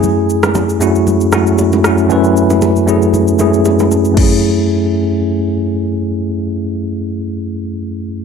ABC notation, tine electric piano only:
X:1
M:4/4
L:1/8
Q:"Swing 16ths" 1/4=116
K:F#m
V:1 name="Tine electric piano"
[F,,A,CEG]2 z [F,,A,CEF]2 [F,,A,CEF]2 [F,,A,CEF] | [F,,A,CEB]2 z [F,,A,CEG]2 [F,,A,CEG]2 z | [F,,A,CEG]8- | [F,,A,CEG]8 |]